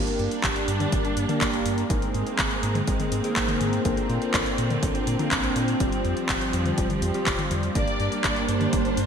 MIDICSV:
0, 0, Header, 1, 6, 480
1, 0, Start_track
1, 0, Tempo, 487805
1, 1871, Time_signature, 4, 2, 24, 8
1, 8917, End_track
2, 0, Start_track
2, 0, Title_t, "Violin section"
2, 0, Program_c, 0, 48
2, 7631, Note_on_c, 0, 74, 102
2, 8077, Note_off_c, 0, 74, 0
2, 8112, Note_on_c, 0, 74, 100
2, 8335, Note_off_c, 0, 74, 0
2, 8352, Note_on_c, 0, 72, 99
2, 8917, Note_off_c, 0, 72, 0
2, 8917, End_track
3, 0, Start_track
3, 0, Title_t, "Analog polysynth"
3, 0, Program_c, 1, 90
3, 0, Note_on_c, 1, 58, 73
3, 0, Note_on_c, 1, 62, 68
3, 0, Note_on_c, 1, 67, 66
3, 0, Note_on_c, 1, 70, 86
3, 1242, Note_off_c, 1, 58, 0
3, 1242, Note_off_c, 1, 62, 0
3, 1242, Note_off_c, 1, 67, 0
3, 1242, Note_off_c, 1, 70, 0
3, 1270, Note_on_c, 1, 58, 98
3, 1270, Note_on_c, 1, 62, 90
3, 1270, Note_on_c, 1, 67, 88
3, 1271, Note_on_c, 1, 70, 108
3, 1841, Note_off_c, 1, 58, 0
3, 1841, Note_off_c, 1, 62, 0
3, 1841, Note_off_c, 1, 67, 0
3, 1842, Note_off_c, 1, 70, 0
3, 1870, Note_on_c, 1, 63, 72
3, 1870, Note_on_c, 1, 68, 70
3, 1870, Note_on_c, 1, 70, 80
3, 1871, Note_on_c, 1, 60, 75
3, 3161, Note_off_c, 1, 63, 0
3, 3161, Note_off_c, 1, 68, 0
3, 3161, Note_off_c, 1, 70, 0
3, 3162, Note_off_c, 1, 60, 0
3, 3190, Note_on_c, 1, 60, 92
3, 3190, Note_on_c, 1, 63, 84
3, 3190, Note_on_c, 1, 68, 89
3, 3190, Note_on_c, 1, 70, 109
3, 3761, Note_off_c, 1, 60, 0
3, 3761, Note_off_c, 1, 63, 0
3, 3761, Note_off_c, 1, 68, 0
3, 3761, Note_off_c, 1, 70, 0
3, 3790, Note_on_c, 1, 60, 77
3, 3790, Note_on_c, 1, 62, 67
3, 3790, Note_on_c, 1, 65, 70
3, 3790, Note_on_c, 1, 70, 84
3, 5081, Note_off_c, 1, 60, 0
3, 5081, Note_off_c, 1, 62, 0
3, 5081, Note_off_c, 1, 65, 0
3, 5081, Note_off_c, 1, 70, 0
3, 5110, Note_on_c, 1, 60, 96
3, 5110, Note_on_c, 1, 62, 90
3, 5110, Note_on_c, 1, 65, 92
3, 5110, Note_on_c, 1, 70, 101
3, 5681, Note_off_c, 1, 60, 0
3, 5681, Note_off_c, 1, 62, 0
3, 5681, Note_off_c, 1, 65, 0
3, 5681, Note_off_c, 1, 70, 0
3, 5710, Note_on_c, 1, 55, 77
3, 5710, Note_on_c, 1, 67, 78
3, 5711, Note_on_c, 1, 60, 68
3, 5711, Note_on_c, 1, 65, 69
3, 7001, Note_off_c, 1, 55, 0
3, 7001, Note_off_c, 1, 67, 0
3, 7002, Note_off_c, 1, 60, 0
3, 7002, Note_off_c, 1, 65, 0
3, 7030, Note_on_c, 1, 55, 97
3, 7030, Note_on_c, 1, 60, 90
3, 7030, Note_on_c, 1, 65, 84
3, 7031, Note_on_c, 1, 67, 105
3, 7601, Note_off_c, 1, 55, 0
3, 7601, Note_off_c, 1, 60, 0
3, 7601, Note_off_c, 1, 65, 0
3, 7601, Note_off_c, 1, 67, 0
3, 7631, Note_on_c, 1, 58, 77
3, 7631, Note_on_c, 1, 62, 70
3, 7631, Note_on_c, 1, 67, 70
3, 7631, Note_on_c, 1, 70, 86
3, 8917, Note_off_c, 1, 58, 0
3, 8917, Note_off_c, 1, 62, 0
3, 8917, Note_off_c, 1, 67, 0
3, 8917, Note_off_c, 1, 70, 0
3, 8917, End_track
4, 0, Start_track
4, 0, Title_t, "String section"
4, 0, Program_c, 2, 48
4, 0, Note_on_c, 2, 55, 79
4, 0, Note_on_c, 2, 58, 73
4, 0, Note_on_c, 2, 62, 93
4, 1851, Note_off_c, 2, 55, 0
4, 1851, Note_off_c, 2, 62, 0
4, 1870, Note_on_c, 2, 56, 83
4, 1870, Note_on_c, 2, 60, 87
4, 3771, Note_off_c, 2, 56, 0
4, 3791, Note_on_c, 2, 50, 80
4, 5671, Note_off_c, 2, 58, 0
4, 5691, Note_off_c, 2, 50, 0
4, 5710, Note_on_c, 2, 53, 83
4, 5710, Note_on_c, 2, 55, 75
4, 7591, Note_off_c, 2, 60, 0
4, 7611, Note_off_c, 2, 53, 0
4, 7611, Note_off_c, 2, 55, 0
4, 7630, Note_on_c, 2, 62, 89
4, 7631, Note_on_c, 2, 58, 76
4, 7632, Note_on_c, 2, 55, 80
4, 8917, Note_off_c, 2, 55, 0
4, 8917, Note_off_c, 2, 58, 0
4, 8917, Note_off_c, 2, 62, 0
4, 8917, End_track
5, 0, Start_track
5, 0, Title_t, "Analog synth bass"
5, 0, Program_c, 3, 38
5, 189, Note_on_c, 3, 43, 81
5, 282, Note_off_c, 3, 43, 0
5, 430, Note_on_c, 3, 31, 99
5, 523, Note_off_c, 3, 31, 0
5, 667, Note_on_c, 3, 43, 96
5, 854, Note_off_c, 3, 43, 0
5, 910, Note_on_c, 3, 31, 89
5, 1003, Note_off_c, 3, 31, 0
5, 1148, Note_on_c, 3, 43, 82
5, 1242, Note_off_c, 3, 43, 0
5, 1390, Note_on_c, 3, 31, 96
5, 1575, Note_off_c, 3, 31, 0
5, 1628, Note_on_c, 3, 43, 77
5, 1814, Note_off_c, 3, 43, 0
5, 1870, Note_on_c, 3, 32, 95
5, 1962, Note_off_c, 3, 32, 0
5, 2109, Note_on_c, 3, 44, 79
5, 2202, Note_off_c, 3, 44, 0
5, 2350, Note_on_c, 3, 32, 98
5, 2443, Note_off_c, 3, 32, 0
5, 2589, Note_on_c, 3, 44, 99
5, 2775, Note_off_c, 3, 44, 0
5, 2830, Note_on_c, 3, 32, 91
5, 2923, Note_off_c, 3, 32, 0
5, 3069, Note_on_c, 3, 44, 82
5, 3162, Note_off_c, 3, 44, 0
5, 3310, Note_on_c, 3, 32, 96
5, 3495, Note_off_c, 3, 32, 0
5, 3548, Note_on_c, 3, 44, 81
5, 3734, Note_off_c, 3, 44, 0
5, 3790, Note_on_c, 3, 34, 98
5, 3883, Note_off_c, 3, 34, 0
5, 4029, Note_on_c, 3, 46, 82
5, 4122, Note_off_c, 3, 46, 0
5, 4269, Note_on_c, 3, 34, 93
5, 4362, Note_off_c, 3, 34, 0
5, 4510, Note_on_c, 3, 46, 91
5, 4695, Note_off_c, 3, 46, 0
5, 4750, Note_on_c, 3, 34, 93
5, 4843, Note_off_c, 3, 34, 0
5, 4990, Note_on_c, 3, 46, 83
5, 5083, Note_off_c, 3, 46, 0
5, 5229, Note_on_c, 3, 34, 94
5, 5415, Note_off_c, 3, 34, 0
5, 5469, Note_on_c, 3, 46, 77
5, 5655, Note_off_c, 3, 46, 0
5, 5710, Note_on_c, 3, 29, 95
5, 5803, Note_off_c, 3, 29, 0
5, 5950, Note_on_c, 3, 41, 81
5, 6043, Note_off_c, 3, 41, 0
5, 6190, Note_on_c, 3, 29, 98
5, 6283, Note_off_c, 3, 29, 0
5, 6429, Note_on_c, 3, 41, 96
5, 6615, Note_off_c, 3, 41, 0
5, 6670, Note_on_c, 3, 29, 91
5, 6763, Note_off_c, 3, 29, 0
5, 6909, Note_on_c, 3, 41, 97
5, 7002, Note_off_c, 3, 41, 0
5, 7150, Note_on_c, 3, 29, 107
5, 7243, Note_off_c, 3, 29, 0
5, 7388, Note_on_c, 3, 41, 78
5, 7575, Note_off_c, 3, 41, 0
5, 7630, Note_on_c, 3, 31, 96
5, 7723, Note_off_c, 3, 31, 0
5, 7870, Note_on_c, 3, 43, 80
5, 7963, Note_off_c, 3, 43, 0
5, 8110, Note_on_c, 3, 31, 93
5, 8203, Note_off_c, 3, 31, 0
5, 8350, Note_on_c, 3, 43, 96
5, 8535, Note_off_c, 3, 43, 0
5, 8590, Note_on_c, 3, 31, 87
5, 8683, Note_off_c, 3, 31, 0
5, 8830, Note_on_c, 3, 43, 83
5, 8917, Note_off_c, 3, 43, 0
5, 8917, End_track
6, 0, Start_track
6, 0, Title_t, "Drums"
6, 69, Note_on_c, 9, 42, 40
6, 168, Note_off_c, 9, 42, 0
6, 190, Note_on_c, 9, 42, 37
6, 288, Note_off_c, 9, 42, 0
6, 309, Note_on_c, 9, 42, 41
6, 407, Note_off_c, 9, 42, 0
6, 429, Note_on_c, 9, 39, 110
6, 429, Note_on_c, 9, 42, 92
6, 430, Note_on_c, 9, 36, 104
6, 528, Note_off_c, 9, 36, 0
6, 528, Note_off_c, 9, 39, 0
6, 528, Note_off_c, 9, 42, 0
6, 550, Note_on_c, 9, 42, 38
6, 648, Note_off_c, 9, 42, 0
6, 670, Note_on_c, 9, 42, 66
6, 768, Note_off_c, 9, 42, 0
6, 790, Note_on_c, 9, 42, 41
6, 790, Note_on_c, 9, 48, 74
6, 888, Note_off_c, 9, 42, 0
6, 888, Note_off_c, 9, 48, 0
6, 909, Note_on_c, 9, 42, 93
6, 910, Note_on_c, 9, 36, 120
6, 1008, Note_off_c, 9, 36, 0
6, 1008, Note_off_c, 9, 42, 0
6, 1030, Note_on_c, 9, 42, 38
6, 1128, Note_off_c, 9, 42, 0
6, 1149, Note_on_c, 9, 42, 63
6, 1248, Note_off_c, 9, 42, 0
6, 1270, Note_on_c, 9, 42, 42
6, 1270, Note_on_c, 9, 48, 77
6, 1368, Note_off_c, 9, 42, 0
6, 1368, Note_off_c, 9, 48, 0
6, 1390, Note_on_c, 9, 36, 104
6, 1390, Note_on_c, 9, 39, 115
6, 1390, Note_on_c, 9, 42, 92
6, 1488, Note_off_c, 9, 36, 0
6, 1488, Note_off_c, 9, 39, 0
6, 1488, Note_off_c, 9, 42, 0
6, 1510, Note_on_c, 9, 42, 40
6, 1608, Note_off_c, 9, 42, 0
6, 1629, Note_on_c, 9, 42, 67
6, 1728, Note_off_c, 9, 42, 0
6, 1750, Note_on_c, 9, 42, 42
6, 1848, Note_off_c, 9, 42, 0
6, 1870, Note_on_c, 9, 36, 127
6, 1870, Note_on_c, 9, 42, 98
6, 1968, Note_off_c, 9, 36, 0
6, 1968, Note_off_c, 9, 42, 0
6, 1990, Note_on_c, 9, 42, 38
6, 2089, Note_off_c, 9, 42, 0
6, 2110, Note_on_c, 9, 42, 37
6, 2209, Note_off_c, 9, 42, 0
6, 2229, Note_on_c, 9, 42, 39
6, 2328, Note_off_c, 9, 42, 0
6, 2349, Note_on_c, 9, 39, 117
6, 2349, Note_on_c, 9, 42, 88
6, 2350, Note_on_c, 9, 36, 109
6, 2447, Note_off_c, 9, 39, 0
6, 2447, Note_off_c, 9, 42, 0
6, 2448, Note_off_c, 9, 36, 0
6, 2469, Note_on_c, 9, 42, 38
6, 2567, Note_off_c, 9, 42, 0
6, 2588, Note_on_c, 9, 42, 65
6, 2687, Note_off_c, 9, 42, 0
6, 2708, Note_on_c, 9, 42, 38
6, 2708, Note_on_c, 9, 48, 78
6, 2807, Note_off_c, 9, 42, 0
6, 2807, Note_off_c, 9, 48, 0
6, 2829, Note_on_c, 9, 42, 89
6, 2830, Note_on_c, 9, 36, 117
6, 2927, Note_off_c, 9, 42, 0
6, 2928, Note_off_c, 9, 36, 0
6, 2948, Note_on_c, 9, 42, 41
6, 2948, Note_on_c, 9, 48, 72
6, 3047, Note_off_c, 9, 42, 0
6, 3047, Note_off_c, 9, 48, 0
6, 3068, Note_on_c, 9, 42, 68
6, 3167, Note_off_c, 9, 42, 0
6, 3189, Note_on_c, 9, 42, 40
6, 3287, Note_off_c, 9, 42, 0
6, 3308, Note_on_c, 9, 39, 124
6, 3308, Note_on_c, 9, 42, 92
6, 3310, Note_on_c, 9, 36, 108
6, 3407, Note_off_c, 9, 39, 0
6, 3407, Note_off_c, 9, 42, 0
6, 3408, Note_off_c, 9, 36, 0
6, 3429, Note_on_c, 9, 42, 41
6, 3429, Note_on_c, 9, 48, 78
6, 3527, Note_off_c, 9, 42, 0
6, 3527, Note_off_c, 9, 48, 0
6, 3549, Note_on_c, 9, 42, 64
6, 3549, Note_on_c, 9, 48, 74
6, 3647, Note_off_c, 9, 42, 0
6, 3647, Note_off_c, 9, 48, 0
6, 3669, Note_on_c, 9, 42, 39
6, 3768, Note_off_c, 9, 42, 0
6, 3789, Note_on_c, 9, 42, 88
6, 3790, Note_on_c, 9, 36, 126
6, 3887, Note_off_c, 9, 42, 0
6, 3888, Note_off_c, 9, 36, 0
6, 3910, Note_on_c, 9, 42, 37
6, 4008, Note_off_c, 9, 42, 0
6, 4030, Note_on_c, 9, 42, 34
6, 4128, Note_off_c, 9, 42, 0
6, 4150, Note_on_c, 9, 42, 36
6, 4248, Note_off_c, 9, 42, 0
6, 4269, Note_on_c, 9, 36, 114
6, 4269, Note_on_c, 9, 39, 126
6, 4269, Note_on_c, 9, 42, 91
6, 4368, Note_off_c, 9, 36, 0
6, 4368, Note_off_c, 9, 39, 0
6, 4368, Note_off_c, 9, 42, 0
6, 4390, Note_on_c, 9, 42, 36
6, 4488, Note_off_c, 9, 42, 0
6, 4509, Note_on_c, 9, 42, 63
6, 4607, Note_off_c, 9, 42, 0
6, 4629, Note_on_c, 9, 42, 38
6, 4629, Note_on_c, 9, 48, 76
6, 4728, Note_off_c, 9, 42, 0
6, 4728, Note_off_c, 9, 48, 0
6, 4749, Note_on_c, 9, 36, 122
6, 4749, Note_on_c, 9, 42, 83
6, 4848, Note_off_c, 9, 36, 0
6, 4848, Note_off_c, 9, 42, 0
6, 4870, Note_on_c, 9, 42, 40
6, 4968, Note_off_c, 9, 42, 0
6, 4990, Note_on_c, 9, 42, 63
6, 5088, Note_off_c, 9, 42, 0
6, 5110, Note_on_c, 9, 42, 38
6, 5110, Note_on_c, 9, 48, 73
6, 5209, Note_off_c, 9, 42, 0
6, 5209, Note_off_c, 9, 48, 0
6, 5229, Note_on_c, 9, 39, 127
6, 5229, Note_on_c, 9, 42, 86
6, 5230, Note_on_c, 9, 36, 107
6, 5327, Note_off_c, 9, 39, 0
6, 5327, Note_off_c, 9, 42, 0
6, 5328, Note_off_c, 9, 36, 0
6, 5349, Note_on_c, 9, 42, 40
6, 5447, Note_off_c, 9, 42, 0
6, 5470, Note_on_c, 9, 42, 63
6, 5568, Note_off_c, 9, 42, 0
6, 5589, Note_on_c, 9, 42, 38
6, 5688, Note_off_c, 9, 42, 0
6, 5709, Note_on_c, 9, 42, 90
6, 5710, Note_on_c, 9, 36, 119
6, 5808, Note_off_c, 9, 36, 0
6, 5808, Note_off_c, 9, 42, 0
6, 5829, Note_on_c, 9, 42, 38
6, 5928, Note_off_c, 9, 42, 0
6, 5949, Note_on_c, 9, 42, 34
6, 6048, Note_off_c, 9, 42, 0
6, 6069, Note_on_c, 9, 42, 36
6, 6167, Note_off_c, 9, 42, 0
6, 6189, Note_on_c, 9, 39, 122
6, 6189, Note_on_c, 9, 42, 83
6, 6190, Note_on_c, 9, 36, 107
6, 6287, Note_off_c, 9, 39, 0
6, 6287, Note_off_c, 9, 42, 0
6, 6288, Note_off_c, 9, 36, 0
6, 6309, Note_on_c, 9, 42, 36
6, 6407, Note_off_c, 9, 42, 0
6, 6429, Note_on_c, 9, 42, 62
6, 6527, Note_off_c, 9, 42, 0
6, 6549, Note_on_c, 9, 42, 37
6, 6549, Note_on_c, 9, 48, 74
6, 6648, Note_off_c, 9, 42, 0
6, 6648, Note_off_c, 9, 48, 0
6, 6668, Note_on_c, 9, 42, 82
6, 6670, Note_on_c, 9, 36, 116
6, 6767, Note_off_c, 9, 42, 0
6, 6768, Note_off_c, 9, 36, 0
6, 6789, Note_on_c, 9, 42, 39
6, 6789, Note_on_c, 9, 48, 77
6, 6887, Note_off_c, 9, 42, 0
6, 6887, Note_off_c, 9, 48, 0
6, 6909, Note_on_c, 9, 42, 62
6, 7007, Note_off_c, 9, 42, 0
6, 7029, Note_on_c, 9, 42, 38
6, 7128, Note_off_c, 9, 42, 0
6, 7149, Note_on_c, 9, 39, 125
6, 7149, Note_on_c, 9, 42, 85
6, 7150, Note_on_c, 9, 36, 109
6, 7247, Note_off_c, 9, 39, 0
6, 7247, Note_off_c, 9, 42, 0
6, 7248, Note_off_c, 9, 36, 0
6, 7269, Note_on_c, 9, 42, 38
6, 7269, Note_on_c, 9, 48, 77
6, 7368, Note_off_c, 9, 42, 0
6, 7368, Note_off_c, 9, 48, 0
6, 7389, Note_on_c, 9, 42, 62
6, 7389, Note_on_c, 9, 48, 70
6, 7487, Note_off_c, 9, 42, 0
6, 7487, Note_off_c, 9, 48, 0
6, 7509, Note_on_c, 9, 42, 36
6, 7608, Note_off_c, 9, 42, 0
6, 7629, Note_on_c, 9, 42, 90
6, 7630, Note_on_c, 9, 36, 124
6, 7728, Note_off_c, 9, 36, 0
6, 7728, Note_off_c, 9, 42, 0
6, 7750, Note_on_c, 9, 42, 36
6, 7848, Note_off_c, 9, 42, 0
6, 7869, Note_on_c, 9, 42, 36
6, 7967, Note_off_c, 9, 42, 0
6, 7989, Note_on_c, 9, 42, 37
6, 8088, Note_off_c, 9, 42, 0
6, 8110, Note_on_c, 9, 36, 110
6, 8110, Note_on_c, 9, 39, 109
6, 8110, Note_on_c, 9, 42, 86
6, 8208, Note_off_c, 9, 36, 0
6, 8209, Note_off_c, 9, 39, 0
6, 8209, Note_off_c, 9, 42, 0
6, 8229, Note_on_c, 9, 42, 34
6, 8328, Note_off_c, 9, 42, 0
6, 8349, Note_on_c, 9, 42, 63
6, 8448, Note_off_c, 9, 42, 0
6, 8469, Note_on_c, 9, 42, 38
6, 8469, Note_on_c, 9, 48, 77
6, 8568, Note_off_c, 9, 42, 0
6, 8568, Note_off_c, 9, 48, 0
6, 8589, Note_on_c, 9, 42, 79
6, 8590, Note_on_c, 9, 36, 114
6, 8687, Note_off_c, 9, 42, 0
6, 8688, Note_off_c, 9, 36, 0
6, 8709, Note_on_c, 9, 42, 37
6, 8808, Note_off_c, 9, 42, 0
6, 8830, Note_on_c, 9, 42, 64
6, 8917, Note_off_c, 9, 42, 0
6, 8917, End_track
0, 0, End_of_file